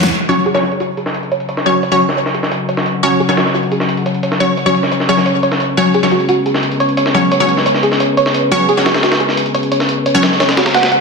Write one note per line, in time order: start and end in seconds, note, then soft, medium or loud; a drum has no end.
0.00 0.11 F#5 medium
0.00 snare medium
0.00 closed hi-hat soft
0.12 11.01 C#4 medium
0.12 5.56 F#4 medium
0.12 5.58 F#5 medium
0.12 closed hi-hat medium
0.29 0.52 F#3 loud
0.29 0.52 C#4 medium
0.29 0.45 F#4 medium
0.29 0.52 C#5 loud
0.29 closed hi-hat medium
0.37 closed hi-hat soft
0.46 0.53 G#4 loud
0.46 closed hi-hat medium
0.54 0.64 F#3 medium
0.54 0.64 C#4 medium
0.54 0.64 C#5 medium
0.54 snare soft
0.63 0.79 F#4 medium
0.63 closed hi-hat medium
0.72 closed hi-hat soft
0.80 0.87 F#4 medium
0.80 closed hi-hat medium
0.97 1.04 G#4 medium
0.97 closed hi-hat medium
1.06 snare soft
1.14 closed hi-hat medium
1.23 closed hi-hat soft
1.32 1.43 C#5 loud
1.32 closed hi-hat medium
1.40 closed hi-hat soft
1.49 1.60 C#5 medium
1.49 closed hi-hat medium
1.57 snare soft
1.66 1.81 F#3 medium
1.66 1.81 C#4 medium
1.66 1.81 C#5 medium
1.66 closed hi-hat medium
1.83 1.94 C#5 medium
1.83 closed hi-hat medium
1.92 2.01 F#3 medium
1.92 2.01 C#4 medium
1.92 2.01 C#5 loud
2.00 closed hi-hat medium
2.09 snare soft
2.17 2.24 C#5 medium
2.17 closed hi-hat medium
2.26 snare soft
2.34 2.41 G#4 medium
2.34 closed hi-hat medium
2.43 snare soft
2.52 2.58 C#5 medium
2.52 closed hi-hat medium
2.69 2.80 C#5 loud
2.69 closed hi-hat medium
2.77 snare soft
2.86 closed hi-hat medium
3.03 3.27 F#3 medium
3.03 3.27 C#4 medium
3.03 3.19 F#4 medium
3.03 3.27 C#5 loud
3.03 closed hi-hat medium
3.12 closed hi-hat soft
3.20 3.27 G#4 loud
3.20 closed hi-hat medium
3.29 3.38 F#3 medium
3.29 3.38 C#4 medium
3.29 3.38 C#5 medium
3.29 snare soft
3.37 3.53 F#4 medium
3.37 snare loud
3.37 closed hi-hat medium
3.46 snare soft
3.54 3.61 F#4 medium
3.54 closed hi-hat medium
3.63 closed hi-hat soft
3.72 3.78 G#4 medium
3.72 closed hi-hat medium
3.80 snare soft
3.89 closed hi-hat medium
3.97 closed hi-hat soft
4.06 4.17 C#5 medium
4.06 closed hi-hat medium
4.14 closed hi-hat soft
4.23 4.34 C#5 medium
4.23 closed hi-hat medium
4.32 snare soft
4.40 4.55 F#3 medium
4.40 4.55 C#4 medium
4.40 4.55 C#5 loud
4.40 closed hi-hat medium
4.57 4.69 C#5 medium
4.57 closed hi-hat medium
4.66 4.75 F#3 medium
4.66 4.75 C#4 medium
4.66 4.75 C#5 loud
4.74 closed hi-hat medium
4.83 snare soft
4.92 4.98 C#5 medium
4.92 closed hi-hat medium
5.00 snare soft
5.09 5.18 F#3 medium
5.09 5.18 C#4 medium
5.09 5.16 G#4 medium
5.09 5.18 C#5 loud
5.09 closed hi-hat medium
5.17 snare soft
5.26 5.33 C#5 medium
5.26 closed hi-hat medium
5.43 5.54 C#5 loud
5.43 closed hi-hat medium
5.52 snare soft
5.60 11.01 G#4 medium
5.60 11.01 B4 medium
5.60 closed hi-hat medium
5.77 6.01 F#3 loud
5.77 6.01 C#4 medium
5.77 5.94 F#4 medium
5.77 6.01 C#5 loud
5.77 closed hi-hat medium
5.86 closed hi-hat soft
5.94 6.01 G#4 loud
5.94 closed hi-hat medium
6.03 6.13 F#3 medium
6.03 6.13 C#4 medium
6.03 6.13 C#5 medium
6.03 snare soft
6.12 6.28 F#4 medium
6.12 closed hi-hat medium
6.20 closed hi-hat soft
6.29 6.36 F#4 medium
6.29 closed hi-hat medium
6.46 6.53 G#4 medium
6.46 closed hi-hat medium
6.54 snare soft
6.63 closed hi-hat medium
6.72 closed hi-hat soft
6.80 6.92 C#5 loud
6.80 closed hi-hat medium
6.89 closed hi-hat soft
6.97 7.09 C#5 medium
6.97 closed hi-hat medium
7.06 snare soft
7.14 7.30 F#3 medium
7.14 7.30 C#4 medium
7.14 7.30 C#5 loud
7.14 closed hi-hat medium
7.32 7.43 C#5 medium
7.32 closed hi-hat medium
7.40 7.50 F#3 medium
7.40 7.50 C#4 medium
7.40 7.50 C#5 loud
7.49 closed hi-hat medium
7.57 snare soft
7.66 7.73 C#5 medium
7.66 closed hi-hat medium
7.74 snare soft
7.83 7.90 G#4 medium
7.83 closed hi-hat medium
7.92 snare soft
8.00 8.07 C#5 medium
8.00 closed hi-hat medium
8.17 8.29 C#5 loud
8.17 closed hi-hat medium
8.26 snare soft
8.34 closed hi-hat medium
8.52 8.75 F#3 loud
8.52 8.75 C#4 medium
8.52 8.68 F#4 medium
8.52 8.75 C#5 loud
8.52 closed hi-hat medium
8.60 closed hi-hat soft
8.69 8.76 G#4 loud
8.69 closed hi-hat medium
8.77 8.87 F#3 medium
8.77 8.87 C#4 medium
8.77 8.87 C#5 medium
8.77 snare soft
8.86 9.02 F#4 medium
8.86 snare loud
8.86 closed hi-hat medium
8.94 snare loud
8.94 closed hi-hat medium
9.03 9.10 F#4 medium
9.03 snare loud
9.03 closed hi-hat medium
9.12 snare loud
9.12 closed hi-hat medium
9.20 9.27 G#4 medium
9.20 closed hi-hat medium
9.29 snare soft
9.37 closed hi-hat medium
9.46 closed hi-hat soft
9.54 9.66 C#5 loud
9.54 closed hi-hat medium
9.63 closed hi-hat soft
9.72 9.83 C#5 medium
9.72 closed hi-hat medium
9.80 snare soft
9.89 closed hi-hat medium
10.06 10.17 C#5 medium
10.06 closed hi-hat medium
10.14 10.24 F#3 medium
10.14 10.24 C#4 medium
10.14 10.24 C#5 loud
10.23 snare loud
10.23 closed hi-hat medium
10.32 snare soft
10.40 10.47 C#5 medium
10.40 snare loud
10.40 closed hi-hat medium
10.49 snare loud
10.49 closed hi-hat medium
10.57 10.69 F#4 medium
10.57 snare loud
10.57 closed hi-hat medium
10.66 snare loud
10.66 closed hi-hat medium
10.74 10.86 F#5 loud
10.74 snare loud
10.74 closed hi-hat medium
10.83 snare loud
10.83 closed hi-hat medium
10.92 11.01 F#5 medium
10.92 closed hi-hat medium